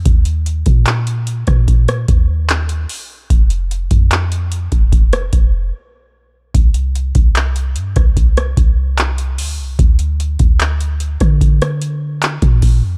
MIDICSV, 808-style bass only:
0, 0, Header, 1, 2, 480
1, 0, Start_track
1, 0, Tempo, 810811
1, 34, Time_signature, 4, 2, 24, 8
1, 7682, End_track
2, 0, Start_track
2, 0, Title_t, "808-style bass"
2, 0, Program_c, 0, 38
2, 34, Note_on_c, 0, 39, 107
2, 380, Note_off_c, 0, 39, 0
2, 394, Note_on_c, 0, 46, 97
2, 855, Note_off_c, 0, 46, 0
2, 874, Note_on_c, 0, 46, 94
2, 1220, Note_off_c, 0, 46, 0
2, 1235, Note_on_c, 0, 39, 107
2, 1695, Note_off_c, 0, 39, 0
2, 1956, Note_on_c, 0, 29, 105
2, 2301, Note_off_c, 0, 29, 0
2, 2315, Note_on_c, 0, 41, 96
2, 2775, Note_off_c, 0, 41, 0
2, 2797, Note_on_c, 0, 29, 93
2, 3141, Note_off_c, 0, 29, 0
2, 3156, Note_on_c, 0, 29, 108
2, 3385, Note_off_c, 0, 29, 0
2, 3876, Note_on_c, 0, 36, 109
2, 4221, Note_off_c, 0, 36, 0
2, 4235, Note_on_c, 0, 36, 100
2, 4595, Note_on_c, 0, 43, 97
2, 4604, Note_off_c, 0, 36, 0
2, 4709, Note_off_c, 0, 43, 0
2, 4715, Note_on_c, 0, 36, 97
2, 5060, Note_off_c, 0, 36, 0
2, 5075, Note_on_c, 0, 36, 110
2, 5555, Note_on_c, 0, 38, 99
2, 5564, Note_off_c, 0, 36, 0
2, 5676, Note_on_c, 0, 36, 97
2, 5685, Note_off_c, 0, 38, 0
2, 5789, Note_off_c, 0, 36, 0
2, 5796, Note_on_c, 0, 38, 112
2, 6141, Note_off_c, 0, 38, 0
2, 6156, Note_on_c, 0, 38, 100
2, 6616, Note_off_c, 0, 38, 0
2, 6637, Note_on_c, 0, 50, 98
2, 7332, Note_off_c, 0, 50, 0
2, 7355, Note_on_c, 0, 46, 108
2, 7597, Note_on_c, 0, 41, 97
2, 7606, Note_off_c, 0, 46, 0
2, 7682, Note_off_c, 0, 41, 0
2, 7682, End_track
0, 0, End_of_file